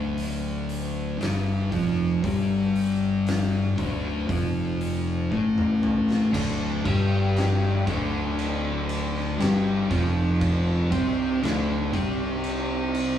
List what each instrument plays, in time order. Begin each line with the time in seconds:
Already playing: fingered electric bass D1, distorted electric guitar D2 D3
0.18 open hi-hat
0.69 open hi-hat
1.20 fingered electric bass G1, distorted electric guitar G2 G3, snare, open hi-hat
1.72 fingered electric bass F1, distorted electric guitar F2 F3, kick, open hi-hat
2.24 fingered electric bass G1, distorted electric guitar G2 G3, kick, open hi-hat
2.76 open hi-hat
3.27 snare, open hi-hat
3.77 fingered electric bass D1, distorted electric guitar D2 D3, kick, open hi-hat
4.29 fingered electric bass F1, distorted electric guitar F2 F3, kick, open hi-hat
4.81 open hi-hat
5.31 fingered electric bass A1, distorted electric guitar A2 A3, kick
5.58 mid tom
5.83 mid tom
6.11 snare
6.33 fingered electric bass D1, distorted electric guitar D2 D3, kick, crash
6.85 fingered electric bass G1, distorted electric guitar G2 G3, kick, ride
7.36 snare, ride
7.87 fingered electric bass D1, distorted electric guitar D2 D3, kick, ride
8.39 ride
8.89 ride
9.17 snare
9.40 fingered electric bass G1, distorted electric guitar G2 G3, snare, ride
9.91 fingered electric bass F1, distorted electric guitar F2 F3, kick, ride
10.41 kick, ride
10.92 fingered electric bass C2, distorted electric guitar C3 C4, kick, ride
11.43 fingered electric bass D1, distorted electric guitar D2 D3, snare, ride
11.94 fingered electric bass C2, distorted electric guitar C3 C4, kick, ride
12.44 ride
12.95 ride